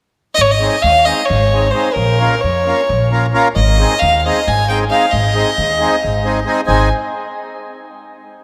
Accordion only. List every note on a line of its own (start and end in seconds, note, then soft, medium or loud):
0.59 0.75 G#3 medium
0.59 0.75 C4 medium
0.59 0.76 D#4 medium
0.59 0.76 G#4 medium
1.06 1.22 G#3 medium
1.06 1.22 C4 medium
1.06 1.22 D#4 soft
1.06 1.22 G#4 medium
1.52 1.67 G#3 medium
1.52 1.68 C4 soft
1.52 1.68 D#4 soft
1.52 1.68 G#4 medium
1.73 1.88 G#3 medium
1.73 1.89 C4 medium
1.73 1.89 D#4 medium
1.73 1.89 G#4 medium
2.19 2.34 A#3 medium
2.19 2.35 C#4 medium
2.19 2.35 F4 medium
2.19 2.36 A#4 medium
2.66 2.81 A#3 medium
2.66 2.81 C#4 medium
2.66 2.82 F4 medium
2.66 2.82 A#4 medium
3.10 3.26 A#3 medium
3.10 3.26 C#4 medium
3.10 3.26 F4 medium
3.10 3.26 A#4 medium
3.33 3.48 A#3 medium
3.33 3.48 C#4 medium
3.33 3.48 F4 medium
3.33 3.48 A#4 medium
3.79 3.94 G#3 medium
3.79 3.94 C4 medium
3.79 3.94 D#4 medium
3.79 3.95 G#4 medium
4.24 4.39 G#3 medium
4.24 4.39 C4 medium
4.24 4.40 D#4 medium
4.24 4.40 G#4 medium
4.69 4.84 G#3 medium
4.69 4.84 C4 medium
4.69 4.84 D#4 soft
4.69 4.85 G#4 medium
4.90 5.05 G#3 medium
4.90 5.05 C4 medium
4.90 5.06 D#4 medium
4.90 5.06 G#4 medium
5.34 5.50 G#3 medium
5.34 5.50 C4 medium
5.34 5.50 D#4 medium
5.34 5.51 G#4 medium
5.79 5.95 G#3 medium
5.79 5.96 C4 medium
5.79 5.96 D#4 medium
5.79 5.96 G#4 medium
6.24 6.39 G#3 medium
6.24 6.40 C4 soft
6.24 6.40 D#4 medium
6.24 6.40 G#4 medium
6.45 6.60 G#3 medium
6.45 6.61 C4 medium
6.45 6.61 D#4 medium
6.45 6.61 G#4 medium
6.67 6.89 G#3 medium
6.67 6.89 C4 medium
6.67 6.89 D#4 medium
6.67 6.89 G#4 medium